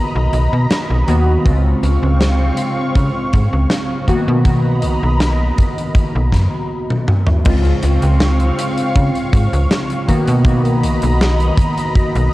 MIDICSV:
0, 0, Header, 1, 5, 480
1, 0, Start_track
1, 0, Tempo, 750000
1, 931, Time_signature, 4, 2, 24, 8
1, 7896, End_track
2, 0, Start_track
2, 0, Title_t, "Analog synth pad"
2, 0, Program_c, 0, 89
2, 0, Note_on_c, 0, 75, 67
2, 0, Note_on_c, 0, 82, 75
2, 0, Note_on_c, 0, 83, 82
2, 910, Note_off_c, 0, 75, 0
2, 910, Note_off_c, 0, 82, 0
2, 910, Note_off_c, 0, 83, 0
2, 929, Note_on_c, 0, 85, 90
2, 930, Note_on_c, 0, 60, 78
2, 930, Note_on_c, 0, 77, 74
2, 2594, Note_off_c, 0, 60, 0
2, 2594, Note_off_c, 0, 77, 0
2, 2594, Note_off_c, 0, 85, 0
2, 2611, Note_on_c, 0, 75, 70
2, 2613, Note_on_c, 0, 82, 74
2, 2613, Note_on_c, 0, 83, 81
2, 4275, Note_off_c, 0, 75, 0
2, 4275, Note_off_c, 0, 82, 0
2, 4276, Note_off_c, 0, 83, 0
2, 4773, Note_on_c, 0, 77, 71
2, 4773, Note_on_c, 0, 85, 85
2, 4775, Note_on_c, 0, 60, 85
2, 6435, Note_off_c, 0, 77, 0
2, 6435, Note_off_c, 0, 85, 0
2, 6437, Note_off_c, 0, 60, 0
2, 6452, Note_on_c, 0, 75, 71
2, 6452, Note_on_c, 0, 82, 78
2, 6453, Note_on_c, 0, 83, 81
2, 7896, Note_off_c, 0, 75, 0
2, 7896, Note_off_c, 0, 82, 0
2, 7896, Note_off_c, 0, 83, 0
2, 7896, End_track
3, 0, Start_track
3, 0, Title_t, "Synth keys"
3, 0, Program_c, 1, 88
3, 0, Control_c, 1, 64, 127
3, 0, Note_on_c, 1, 51, 78
3, 0, Note_on_c, 1, 58, 72
3, 0, Note_on_c, 1, 59, 74
3, 0, Note_on_c, 1, 66, 88
3, 658, Note_off_c, 1, 51, 0
3, 661, Note_off_c, 1, 58, 0
3, 664, Note_off_c, 1, 59, 0
3, 668, Note_off_c, 1, 66, 0
3, 686, Note_on_c, 1, 51, 89
3, 689, Note_on_c, 1, 58, 83
3, 692, Note_on_c, 1, 59, 84
3, 696, Note_on_c, 1, 66, 94
3, 901, Note_off_c, 1, 51, 0
3, 903, Note_off_c, 1, 58, 0
3, 904, Note_off_c, 1, 59, 0
3, 906, Note_off_c, 1, 66, 0
3, 922, Note_on_c, 1, 49, 83
3, 929, Note_on_c, 1, 56, 71
3, 936, Note_on_c, 1, 60, 69
3, 940, Control_c, 1, 64, 0
3, 942, Note_on_c, 1, 65, 86
3, 1068, Control_c, 1, 64, 127
3, 2579, Note_off_c, 1, 49, 0
3, 2583, Note_off_c, 1, 56, 0
3, 2586, Note_off_c, 1, 60, 0
3, 2589, Note_off_c, 1, 65, 0
3, 2607, Note_on_c, 1, 51, 91
3, 2610, Note_on_c, 1, 58, 81
3, 2613, Note_on_c, 1, 59, 85
3, 2616, Note_on_c, 1, 66, 105
3, 2621, Control_c, 1, 64, 0
3, 2720, Control_c, 1, 64, 127
3, 2822, Note_off_c, 1, 51, 0
3, 2823, Note_off_c, 1, 58, 0
3, 2825, Note_off_c, 1, 59, 0
3, 2826, Note_off_c, 1, 66, 0
3, 2844, Note_on_c, 1, 51, 82
3, 2850, Note_on_c, 1, 58, 74
3, 2857, Note_on_c, 1, 59, 72
3, 2863, Note_on_c, 1, 66, 91
3, 4288, Note_off_c, 1, 51, 0
3, 4291, Note_off_c, 1, 58, 0
3, 4294, Note_off_c, 1, 59, 0
3, 4297, Note_off_c, 1, 66, 0
3, 4761, Note_on_c, 1, 49, 83
3, 4768, Note_on_c, 1, 56, 75
3, 4774, Note_on_c, 1, 60, 78
3, 4779, Control_c, 1, 64, 0
3, 4780, Note_on_c, 1, 65, 93
3, 4880, Control_c, 1, 64, 127
3, 6419, Note_off_c, 1, 49, 0
3, 6422, Note_off_c, 1, 56, 0
3, 6425, Note_off_c, 1, 60, 0
3, 6428, Note_off_c, 1, 65, 0
3, 6448, Note_on_c, 1, 51, 93
3, 6452, Note_on_c, 1, 58, 83
3, 6455, Note_on_c, 1, 59, 82
3, 6458, Note_on_c, 1, 66, 100
3, 6460, Control_c, 1, 64, 0
3, 6558, Control_c, 1, 64, 127
3, 6662, Note_off_c, 1, 51, 0
3, 6664, Note_off_c, 1, 58, 0
3, 6666, Note_off_c, 1, 59, 0
3, 6667, Note_off_c, 1, 66, 0
3, 6682, Note_on_c, 1, 51, 84
3, 6689, Note_on_c, 1, 58, 71
3, 6694, Note_on_c, 1, 59, 78
3, 6701, Note_on_c, 1, 66, 89
3, 7896, Note_off_c, 1, 51, 0
3, 7896, Note_off_c, 1, 58, 0
3, 7896, Note_off_c, 1, 59, 0
3, 7896, Note_off_c, 1, 66, 0
3, 7896, End_track
4, 0, Start_track
4, 0, Title_t, "FM bass"
4, 0, Program_c, 2, 39
4, 99, Note_on_c, 2, 35, 95
4, 185, Note_off_c, 2, 35, 0
4, 211, Note_on_c, 2, 35, 91
4, 306, Note_off_c, 2, 35, 0
4, 338, Note_on_c, 2, 47, 89
4, 424, Note_off_c, 2, 47, 0
4, 577, Note_on_c, 2, 35, 94
4, 664, Note_off_c, 2, 35, 0
4, 693, Note_on_c, 2, 39, 91
4, 876, Note_off_c, 2, 39, 0
4, 932, Note_on_c, 2, 37, 97
4, 1116, Note_off_c, 2, 37, 0
4, 1171, Note_on_c, 2, 37, 81
4, 1266, Note_off_c, 2, 37, 0
4, 1297, Note_on_c, 2, 37, 95
4, 1607, Note_off_c, 2, 37, 0
4, 1892, Note_on_c, 2, 49, 86
4, 1987, Note_off_c, 2, 49, 0
4, 2135, Note_on_c, 2, 44, 82
4, 2228, Note_off_c, 2, 44, 0
4, 2257, Note_on_c, 2, 37, 89
4, 2344, Note_off_c, 2, 37, 0
4, 2738, Note_on_c, 2, 47, 101
4, 3094, Note_on_c, 2, 35, 81
4, 3103, Note_off_c, 2, 47, 0
4, 3187, Note_off_c, 2, 35, 0
4, 3218, Note_on_c, 2, 35, 94
4, 3527, Note_off_c, 2, 35, 0
4, 3937, Note_on_c, 2, 35, 96
4, 4048, Note_on_c, 2, 42, 100
4, 4057, Note_off_c, 2, 35, 0
4, 4145, Note_off_c, 2, 42, 0
4, 4774, Note_on_c, 2, 37, 100
4, 4957, Note_off_c, 2, 37, 0
4, 5013, Note_on_c, 2, 37, 84
4, 5107, Note_off_c, 2, 37, 0
4, 5138, Note_on_c, 2, 37, 96
4, 5448, Note_off_c, 2, 37, 0
4, 5733, Note_on_c, 2, 49, 86
4, 5827, Note_off_c, 2, 49, 0
4, 5972, Note_on_c, 2, 44, 82
4, 6067, Note_off_c, 2, 44, 0
4, 6099, Note_on_c, 2, 37, 102
4, 6185, Note_off_c, 2, 37, 0
4, 6579, Note_on_c, 2, 47, 102
4, 6935, Note_on_c, 2, 35, 80
4, 6944, Note_off_c, 2, 47, 0
4, 7028, Note_off_c, 2, 35, 0
4, 7058, Note_on_c, 2, 35, 101
4, 7368, Note_off_c, 2, 35, 0
4, 7779, Note_on_c, 2, 35, 101
4, 7865, Note_off_c, 2, 35, 0
4, 7896, End_track
5, 0, Start_track
5, 0, Title_t, "Drums"
5, 211, Note_on_c, 9, 42, 73
5, 275, Note_off_c, 9, 42, 0
5, 451, Note_on_c, 9, 42, 79
5, 452, Note_on_c, 9, 38, 115
5, 515, Note_off_c, 9, 42, 0
5, 516, Note_off_c, 9, 38, 0
5, 690, Note_on_c, 9, 42, 71
5, 754, Note_off_c, 9, 42, 0
5, 932, Note_on_c, 9, 36, 104
5, 932, Note_on_c, 9, 42, 86
5, 996, Note_off_c, 9, 36, 0
5, 996, Note_off_c, 9, 42, 0
5, 1173, Note_on_c, 9, 42, 70
5, 1237, Note_off_c, 9, 42, 0
5, 1412, Note_on_c, 9, 38, 116
5, 1415, Note_on_c, 9, 42, 82
5, 1476, Note_off_c, 9, 38, 0
5, 1479, Note_off_c, 9, 42, 0
5, 1646, Note_on_c, 9, 42, 82
5, 1710, Note_off_c, 9, 42, 0
5, 1891, Note_on_c, 9, 36, 111
5, 1894, Note_on_c, 9, 42, 88
5, 1955, Note_off_c, 9, 36, 0
5, 1958, Note_off_c, 9, 42, 0
5, 2131, Note_on_c, 9, 42, 70
5, 2135, Note_on_c, 9, 36, 98
5, 2195, Note_off_c, 9, 42, 0
5, 2199, Note_off_c, 9, 36, 0
5, 2367, Note_on_c, 9, 38, 103
5, 2374, Note_on_c, 9, 42, 82
5, 2431, Note_off_c, 9, 38, 0
5, 2438, Note_off_c, 9, 42, 0
5, 2609, Note_on_c, 9, 36, 57
5, 2610, Note_on_c, 9, 42, 72
5, 2673, Note_off_c, 9, 36, 0
5, 2674, Note_off_c, 9, 42, 0
5, 2847, Note_on_c, 9, 36, 122
5, 2848, Note_on_c, 9, 42, 87
5, 2911, Note_off_c, 9, 36, 0
5, 2912, Note_off_c, 9, 42, 0
5, 3085, Note_on_c, 9, 42, 80
5, 3149, Note_off_c, 9, 42, 0
5, 3330, Note_on_c, 9, 38, 106
5, 3333, Note_on_c, 9, 42, 90
5, 3394, Note_off_c, 9, 38, 0
5, 3397, Note_off_c, 9, 42, 0
5, 3571, Note_on_c, 9, 42, 76
5, 3574, Note_on_c, 9, 36, 104
5, 3635, Note_off_c, 9, 42, 0
5, 3638, Note_off_c, 9, 36, 0
5, 3700, Note_on_c, 9, 42, 55
5, 3764, Note_off_c, 9, 42, 0
5, 3807, Note_on_c, 9, 36, 108
5, 3807, Note_on_c, 9, 42, 80
5, 3871, Note_off_c, 9, 36, 0
5, 3871, Note_off_c, 9, 42, 0
5, 4047, Note_on_c, 9, 36, 55
5, 4047, Note_on_c, 9, 38, 33
5, 4055, Note_on_c, 9, 42, 74
5, 4111, Note_off_c, 9, 36, 0
5, 4111, Note_off_c, 9, 38, 0
5, 4119, Note_off_c, 9, 42, 0
5, 4418, Note_on_c, 9, 48, 55
5, 4482, Note_off_c, 9, 48, 0
5, 4531, Note_on_c, 9, 47, 73
5, 4595, Note_off_c, 9, 47, 0
5, 4650, Note_on_c, 9, 45, 76
5, 4714, Note_off_c, 9, 45, 0
5, 4769, Note_on_c, 9, 42, 68
5, 4773, Note_on_c, 9, 49, 112
5, 4774, Note_on_c, 9, 36, 123
5, 4833, Note_off_c, 9, 42, 0
5, 4837, Note_off_c, 9, 49, 0
5, 4838, Note_off_c, 9, 36, 0
5, 4896, Note_on_c, 9, 42, 46
5, 4960, Note_off_c, 9, 42, 0
5, 5009, Note_on_c, 9, 42, 98
5, 5073, Note_off_c, 9, 42, 0
5, 5134, Note_on_c, 9, 42, 63
5, 5198, Note_off_c, 9, 42, 0
5, 5250, Note_on_c, 9, 38, 127
5, 5250, Note_on_c, 9, 42, 73
5, 5314, Note_off_c, 9, 38, 0
5, 5314, Note_off_c, 9, 42, 0
5, 5375, Note_on_c, 9, 42, 49
5, 5439, Note_off_c, 9, 42, 0
5, 5496, Note_on_c, 9, 42, 116
5, 5560, Note_off_c, 9, 42, 0
5, 5617, Note_on_c, 9, 42, 69
5, 5681, Note_off_c, 9, 42, 0
5, 5731, Note_on_c, 9, 42, 58
5, 5732, Note_on_c, 9, 36, 113
5, 5795, Note_off_c, 9, 42, 0
5, 5796, Note_off_c, 9, 36, 0
5, 5858, Note_on_c, 9, 42, 47
5, 5922, Note_off_c, 9, 42, 0
5, 5971, Note_on_c, 9, 36, 112
5, 5974, Note_on_c, 9, 42, 92
5, 6035, Note_off_c, 9, 36, 0
5, 6038, Note_off_c, 9, 42, 0
5, 6101, Note_on_c, 9, 42, 65
5, 6165, Note_off_c, 9, 42, 0
5, 6214, Note_on_c, 9, 38, 117
5, 6215, Note_on_c, 9, 42, 64
5, 6278, Note_off_c, 9, 38, 0
5, 6279, Note_off_c, 9, 42, 0
5, 6336, Note_on_c, 9, 42, 52
5, 6400, Note_off_c, 9, 42, 0
5, 6455, Note_on_c, 9, 36, 57
5, 6455, Note_on_c, 9, 42, 95
5, 6519, Note_off_c, 9, 36, 0
5, 6519, Note_off_c, 9, 42, 0
5, 6576, Note_on_c, 9, 42, 66
5, 6640, Note_off_c, 9, 42, 0
5, 6686, Note_on_c, 9, 36, 127
5, 6692, Note_on_c, 9, 42, 65
5, 6750, Note_off_c, 9, 36, 0
5, 6756, Note_off_c, 9, 42, 0
5, 6816, Note_on_c, 9, 42, 49
5, 6880, Note_off_c, 9, 42, 0
5, 6934, Note_on_c, 9, 42, 103
5, 6998, Note_off_c, 9, 42, 0
5, 7053, Note_on_c, 9, 42, 64
5, 7117, Note_off_c, 9, 42, 0
5, 7174, Note_on_c, 9, 42, 71
5, 7175, Note_on_c, 9, 38, 127
5, 7238, Note_off_c, 9, 42, 0
5, 7239, Note_off_c, 9, 38, 0
5, 7296, Note_on_c, 9, 42, 49
5, 7360, Note_off_c, 9, 42, 0
5, 7408, Note_on_c, 9, 36, 114
5, 7413, Note_on_c, 9, 42, 96
5, 7472, Note_off_c, 9, 36, 0
5, 7477, Note_off_c, 9, 42, 0
5, 7536, Note_on_c, 9, 42, 75
5, 7600, Note_off_c, 9, 42, 0
5, 7651, Note_on_c, 9, 36, 107
5, 7652, Note_on_c, 9, 42, 59
5, 7715, Note_off_c, 9, 36, 0
5, 7716, Note_off_c, 9, 42, 0
5, 7779, Note_on_c, 9, 42, 46
5, 7843, Note_off_c, 9, 42, 0
5, 7896, End_track
0, 0, End_of_file